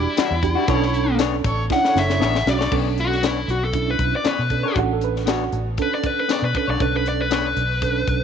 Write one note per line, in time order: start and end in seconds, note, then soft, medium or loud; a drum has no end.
0.00 0.24 G3 medium
0.00 0.28 D4 medium
0.00 1.16 E4 loud
0.00 0.28 F#4 medium
0.00 0.28 G4 medium
0.00 0.24 D5 medium
0.17 0.33 E3 medium
0.17 0.33 G3 medium
0.17 0.34 D4 loud
0.17 0.34 F#4 medium
0.17 muted fingered electric bass stroke soft
0.17 snare loud
0.17 closed hi-hat medium
0.17 tambourine loud
0.31 0.55 E2 medium
0.43 0.64 D4 medium
0.43 0.64 F#4 medium
0.43 0.64 G4 medium
0.43 kick medium
0.43 closed hi-hat medium
0.55 0.67 G3 medium
0.55 0.67 D4 medium
0.55 0.68 F#4 medium
0.66 1.40 B1 loud
0.66 0.84 B3 medium
0.66 1.50 C#4 medium
0.66 0.84 D4 medium
0.66 1.50 D4 medium
0.66 1.06 A4 medium
0.66 1.50 A4 loud
0.66 0.84 A4 medium
0.66 1.06 C#5 medium
0.66 0.85 C#5 loud
0.66 kick loud
0.66 closed hi-hat loud
0.82 snare soft
0.94 closed hi-hat medium
1.18 1.34 B3 medium
1.18 1.35 D4 loud
1.18 1.35 A4 medium
1.18 1.36 C#5 loud
1.18 snare loud
1.18 closed hi-hat loud
1.18 tambourine loud
1.42 1.68 A1 medium
1.42 1.63 D4 medium
1.42 1.63 A4 medium
1.42 1.64 C#5 loud
1.42 kick medium
1.42 closed hi-hat medium
1.70 2.32 C#4 medium
1.70 2.32 D4 medium
1.70 2.32 E4 medium
1.70 1.96 F#5 loud
1.70 kick medium
1.70 snare medium
1.83 2.27 A4 medium
1.83 2.28 C#5 medium
1.83 snare medium
1.95 2.18 F#1 medium
1.95 2.47 E5 medium
1.95 snare medium
2.10 snare medium
2.20 2.44 A1 medium
2.20 2.36 B3 medium
2.20 2.37 D4 medium
2.20 2.37 A4 medium
2.20 2.37 C#5 medium
2.20 snare medium
2.35 snare medium
2.46 2.69 B1 medium
2.46 2.68 C#4 medium
2.46 2.68 D4 medium
2.46 2.68 F#4 medium
2.46 2.73 D5 loud
2.46 snare loud
2.59 2.71 D4 soft
2.59 2.71 A4 medium
2.59 2.71 C#5 medium
2.59 snare medium
2.71 3.44 B1 medium
2.71 2.87 B3 medium
2.71 3.54 C#4 medium
2.71 2.88 D4 medium
2.71 3.54 D4 medium
2.71 3.54 A4 medium
2.71 2.88 A4 medium
2.71 2.88 C#5 medium
2.71 kick loud
2.71 crash medium
2.98 3.24 F#4 medium
2.98 closed hi-hat medium
3.12 snare soft
3.22 3.38 B3 medium
3.22 3.39 D4 medium
3.22 3.49 E4 medium
3.22 3.39 A4 medium
3.22 3.39 C#5 medium
3.22 snare loud
3.22 closed hi-hat medium
3.22 tambourine loud
3.48 3.96 B1 medium
3.48 3.62 F#4 medium
3.48 closed hi-hat medium
3.65 3.88 A4 medium
3.73 4.36 C#4 medium
3.73 4.36 D4 medium
3.73 4.36 E4 medium
3.73 kick medium
3.73 closed hi-hat medium
3.91 4.14 B4 medium
3.99 4.12 B1 medium
3.99 kick medium
3.99 closed hi-hat medium
4.16 4.26 D5 medium
4.24 4.40 B3 medium
4.24 4.41 D4 medium
4.24 4.41 A4 medium
4.24 4.41 C#5 medium
4.24 muted fingered electric bass stroke soft
4.24 snare loud
4.24 closed hi-hat medium
4.24 tambourine medium
4.29 4.76 B4 medium
4.39 4.63 B2 medium
4.50 4.72 C#4 medium
4.50 4.72 D4 soft
4.50 4.72 A4 medium
4.50 kick medium
4.50 closed hi-hat medium
4.63 4.80 D4 soft
4.63 4.79 A4 soft
4.63 4.78 C#5 medium
4.76 5.49 A1 medium
4.76 5.58 C#4 medium
4.76 5.58 D4 medium
4.76 4.90 F#4 medium
4.76 5.58 A4 medium
4.76 kick loud
4.76 closed hi-hat medium
4.93 5.02 A4 medium
5.01 5.27 B4 medium
5.01 closed hi-hat medium
5.16 snare soft
5.26 5.42 B3 medium
5.26 5.43 D4 medium
5.26 5.66 F#4 medium
5.26 5.43 A4 medium
5.26 5.43 C#5 medium
5.26 snare loud
5.26 closed hi-hat medium
5.26 tambourine loud
5.52 5.77 A1 medium
5.52 closed hi-hat medium
5.78 6.40 C#4 medium
5.78 6.40 D4 medium
5.78 6.40 A4 medium
5.78 kick medium
5.78 closed hi-hat medium
5.82 5.93 B4 medium
5.95 6.06 D5 medium
6.04 6.18 B4 medium
6.04 kick medium
6.04 closed hi-hat medium
6.20 6.30 B4 medium
6.29 6.45 B3 medium
6.29 6.45 D4 medium
6.29 6.45 A4 medium
6.29 6.46 C#5 medium
6.29 6.44 D5 medium
6.29 snare loud
6.29 closed hi-hat medium
6.29 tambourine loud
6.42 6.54 B2 medium
6.42 6.56 B4 medium
6.55 6.75 C#4 medium
6.55 6.76 D4 medium
6.55 6.75 A4 medium
6.55 6.69 B4 medium
6.55 muted fingered electric bass stroke soft
6.55 kick medium
6.55 closed hi-hat medium
6.68 6.79 B1 medium
6.68 6.84 D4 soft
6.68 6.83 A4 soft
6.68 6.83 C#5 medium
6.68 6.82 D5 medium
6.80 7.53 B1 medium
6.80 7.62 C#4 medium
6.80 7.62 D4 medium
6.80 7.62 A4 medium
6.80 6.94 B4 medium
6.80 kick loud
6.80 closed hi-hat medium
6.97 7.07 B4 medium
7.06 7.20 D5 medium
7.06 closed hi-hat medium
7.22 7.32 B4 medium
7.30 7.47 B3 medium
7.30 7.47 D4 medium
7.30 7.47 A4 medium
7.30 8.24 B4 loud
7.30 7.48 C#5 medium
7.30 snare loud
7.30 closed hi-hat medium
7.30 tambourine loud
7.56 8.05 B1 medium
7.56 closed hi-hat medium
7.82 8.24 C#4 medium
7.82 8.24 D4 medium
7.82 8.24 A4 medium
7.82 kick medium
7.82 closed hi-hat medium
8.07 8.20 B1 medium
8.07 kick medium
8.07 closed hi-hat medium